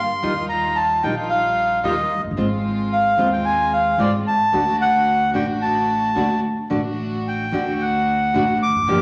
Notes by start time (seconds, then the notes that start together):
Already playing: C6
0.22 D#2 D#3 G3 D#4 F4
0.49 A#5
0.76 A5
1.03 A#1 D#3 G3 D#4 F4 G5
1.30 F5
1.83 D#2 D#3 G3 D#4 F4 D#5
2.17 F1
2.24 F#1
2.31 G1
2.37 G#1 G#3 C4 F4
2.92 F5
3.17 D#2 G#3 C4 F4
3.32 G5
3.45 G#5
3.73 F5
3.98 G#1 G#3 C4 F4 D5
4.27 A5
4.52 D2 D3 A3 D4 F#4
4.81 F#5
5.33 A1 D3 A3 D4 F#4 G5
5.62 A5
6.16 D2 D3 A3 D4 F#4
6.70 A1 D3 A3 D4 F#4
7.28 G5
7.52 D2 D3 A3 D4 F#4
7.81 F#5
8.34 A1 D3 A3 D4 F#4
8.62 D6
8.68 E1
8.75 F1
8.82 F#1
8.88 G1 D3 F3 A#3 D4 F4 G4